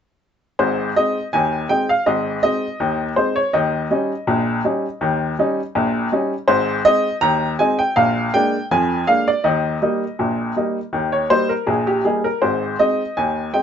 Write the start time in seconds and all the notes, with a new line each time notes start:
0.59 G#1 G#2 C5
0.96 G#3 C4 D#4 D#5
1.33 D#2 D#3 G#5
1.69 G#3 C4 D#4 G5
1.89 F5
2.06 G#1 G#2 D#5
2.43 G#3 C4 D#4 D#5
2.80 D#2 D#3
3.16 G#3 C4 D#4 C5
3.36 C#5
3.53 D#2 D#3 D#5
3.91 G3 C#4 D#4
4.27 A#1 A#2
4.64 G3 C#4 D#4
5.01 D#2 D#3
5.39 G3 C#4 D#4
5.75 A#1 A#2
6.12 G3 C#4 D#4
6.48 G#1 G#2 C5
6.85 G#3 C4 D#4 D#5
7.21 D#2 D#3 A#5
7.59 G#3 C4 D#4 G#5
7.79 G5
7.96 A#1 A#2 F5
8.34 G#3 A#3 D4 G5
8.71 F2 F3 G#5
9.07 G#3 A#3 D4 F5
9.28 D5
9.44 D#2 D#3 D#5
9.82 G3 A#3 D#4
10.19 A#1 A#2
10.56 G3 A#3 D#4
10.93 D#2 D#3
11.12 C#5
11.30 G3 A#3 D#4 C5
11.49 A#4
11.67 A#1 A#2 G#4
11.87 G4
12.05 G3 A#3 D#4 G#4
12.24 A#4
12.42 G#1 G#2 C5
12.79 G#3 C4 D#4 D#5
13.17 D#2 D#3 G#5
13.54 G#3 C4 D#4 G5